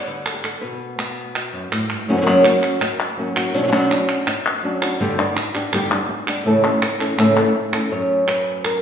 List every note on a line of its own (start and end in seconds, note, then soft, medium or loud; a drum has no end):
0.00 0.61 G3 medium
0.00 0.60 B3 medium
0.07 0.60 D3 medium
0.07 0.60 B4 medium
0.26 0.33 A4 medium
0.26 clap medium
0.34 0.44 G4 medium
0.44 0.61 A4 medium
0.44 clap medium
0.61 1.54 B2 medium
0.61 0.97 B3 soft
0.61 1.35 F#4 soft
0.61 2.08 B4 medium
0.98 2.06 B3 medium
0.98 clap medium
1.36 2.07 F#4 soft
1.36 clap medium
1.53 1.71 F#2 medium
1.72 1.90 A2 medium
1.72 clap medium
1.90 2.08 G2 medium
1.90 clap medium
2.08 2.25 F#2 medium
2.08 2.15 C#3 medium
2.08 2.16 F#3 medium
2.08 2.16 A#3 medium
2.08 2.17 C#4 medium
2.08 2.17 F#4 medium
2.17 2.20 C#3 soft
2.17 2.20 F#3 medium
2.17 2.21 A#3 medium
2.17 2.21 C#4 soft
2.17 2.21 F#4 medium
2.21 2.25 C#3 medium
2.21 2.25 F#3 medium
2.21 2.26 A#3 medium
2.21 2.25 C#4 medium
2.21 2.26 F#4 medium
2.26 2.44 F#2 medium
2.26 2.44 C#3 medium
2.26 2.44 F#3 medium
2.26 2.44 A#3 medium
2.26 2.44 C#4 medium
2.26 2.43 F#4 medium
2.44 2.80 F#3 soft
2.44 2.80 A#3 medium
2.44 2.81 C#4 soft
2.44 2.81 F#4 medium
2.44 clap medium
2.63 clap medium
2.81 muted nylon-string guitar stroke medium
2.81 clap medium
3.00 clap soft
3.17 3.35 F#3 medium
3.17 3.36 A#3 medium
3.17 3.35 C#4 medium
3.17 3.35 F#4 medium
3.36 3.53 F#3 soft
3.36 3.54 A#3 soft
3.36 3.54 C#4 soft
3.36 3.54 F#4 medium
3.36 clap medium
3.54 3.71 B2 medium
3.54 3.61 F#3 medium
3.54 3.62 C#4 medium
3.54 3.62 D4 medium
3.54 3.63 F#4 medium
3.62 3.66 F#3 medium
3.62 3.67 C#4 medium
3.62 3.67 D4 medium
3.62 3.67 F#4 medium
3.67 3.71 F#3 medium
3.67 3.71 C#4 medium
3.67 3.71 D4 medium
3.67 3.72 F#4 medium
3.72 3.90 B2 medium
3.72 3.90 F#3 medium
3.72 3.90 C#4 medium
3.72 3.90 D4 medium
3.72 3.89 F#4 medium
3.90 4.26 C#4 soft
3.90 4.26 D4 soft
3.90 4.26 F#4 soft
3.90 clap medium
4.09 clap medium
4.26 muted nylon-string guitar stroke medium
4.26 clap medium
4.46 clap soft
4.63 4.81 F#3 medium
4.63 4.81 C#4 medium
4.63 4.82 D4 medium
4.63 4.81 F#4 medium
4.82 5.01 C#4 soft
4.82 5.00 D4 soft
4.82 4.99 F#4 medium
4.82 clap medium
5.00 5.18 G2 medium
5.00 5.18 D3 medium
5.00 5.18 G3 medium
5.00 5.18 B3 medium
5.00 5.17 D4 medium
5.00 5.17 G4 medium
5.18 5.35 G3 soft
5.18 5.35 B3 medium
5.18 5.35 D4 medium
5.18 5.35 G4 medium
5.35 muted nylon-string guitar stroke medium
5.35 clap medium
5.55 5.73 G3 soft
5.55 5.73 B3 medium
5.55 5.73 D4 medium
5.55 5.72 G4 medium
5.55 clap medium
5.73 5.90 G2 medium
5.73 5.91 D3 medium
5.73 5.91 G3 medium
5.73 5.91 B3 medium
5.73 5.91 D4 loud
5.73 5.90 G4 loud
5.73 clap medium
5.91 6.09 G3 soft
5.91 6.09 B3 medium
5.91 6.09 D4 medium
5.91 6.09 G4 medium
5.91 clap soft
6.09 muted nylon-string guitar stroke medium
6.27 6.45 G3 soft
6.27 6.46 B3 soft
6.27 6.45 D4 soft
6.27 6.45 G4 soft
6.27 clap medium
6.45 6.63 A2 medium
6.45 6.63 C#3 medium
6.45 6.63 E3 medium
6.45 6.63 A3 medium
6.45 6.63 C#4 medium
6.45 6.63 A4 medium
6.64 6.81 E3 soft
6.64 6.81 A3 soft
6.64 6.82 C#4 medium
6.64 6.82 A4 medium
6.64 clap soft
6.82 muted nylon-string guitar stroke medium
6.82 clap medium
7.00 7.17 E3 medium
7.00 7.18 A3 soft
7.00 7.18 C#4 medium
7.00 7.18 A4 medium
7.00 clap medium
7.17 7.36 A2 medium
7.17 7.36 C#3 medium
7.17 7.36 E3 medium
7.17 7.36 A3 medium
7.17 7.36 C#4 medium
7.17 7.35 A4 medium
7.17 clap medium
7.36 7.54 E3 medium
7.36 7.54 A3 medium
7.36 7.54 C#4 medium
7.36 7.54 A4 medium
7.36 clap soft
7.55 muted nylon-string guitar stroke medium
7.73 7.92 E3 soft
7.73 7.91 A3 medium
7.73 7.91 C#4 medium
7.73 7.91 A4 medium
7.73 clap medium
7.91 8.82 F#2 medium
7.91 8.28 C#4 soft
7.91 8.65 C#5 medium
8.28 8.64 B4 medium
8.28 clap medium
8.65 8.82 A#4 medium
8.65 clap medium